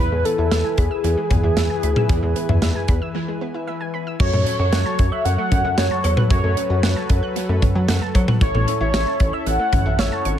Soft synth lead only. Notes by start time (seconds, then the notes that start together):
0.00 B4
0.25 A4
0.78 G#4
4.20 C#5
4.59 C#5
5.12 E5
5.25 F#5
5.78 C#5
6.17 B4
6.30 C#5
8.42 C#5
8.81 C#5
9.33 E5
9.47 F#5
9.99 C#5